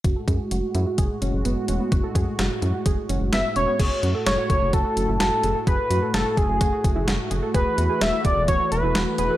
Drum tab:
CC |--------|--------|x-------|--------|
HH |xxxxxxxx|xxxxxxxx|xxxxxxxx|xxxxxxxx|
SD |--------|--o---o-|--o---o-|--o---o-|
BD |oo--o---|oo--o---|o--oo---|o--ooo--|

CC |--------|
HH |xxxxxxxx|
SD |--o---o-|
BD |o--oo---|